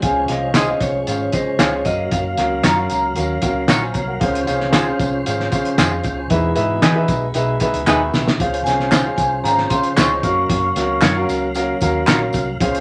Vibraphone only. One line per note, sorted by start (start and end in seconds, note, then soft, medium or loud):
0.03 0.15 G#5 medium
0.28 0.56 F5 medium
0.56 0.83 D#5 medium
0.82 1.36 C#5 medium
1.34 1.61 C5 medium
1.60 1.87 C#5 medium
1.85 1.97 D#5 medium
2.11 2.66 F5 medium
2.64 3.13 A#5 medium
8.41 8.68 F5 medium
8.64 9.15 G#5 medium
9.17 9.45 G#5 medium
9.44 9.69 A#5 medium
9.70 9.82 C6 loud
9.96 10.19 C#6 loud
10.20 11.23 C#6 medium